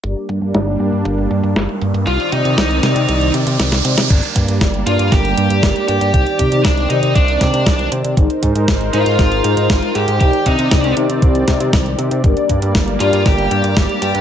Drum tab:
CC |----------------|----------------|x---------------|----------------|
HH |xxxxxxxxxxxxxxxx|xxxxxxxxxxxxxxxx|xxxxxxxxxxxxxxxx|xxxxxxxxxxxxxxxx|
SD |----o-------o---|----o-o-----oo-o|----o---o---o---|----o-----o-o---|
BD |o-o-o---o---o---|o-o-o---o-o-o---|o-o-o---o---o---|o-o-o---o-o-o---|

CC |----------------|----------------|----------------|
HH |xxxxxxxxxxxxxxxx|xxxxxxxxxxxxxxxx|xxxxxxxxxxxxxxxx|
SD |----o---o---o---|----o-----o-o---|----o---o---o---|
BD |o-o-o---o---o---|o-o-o---o-o-o---|o-o-o---o---o---|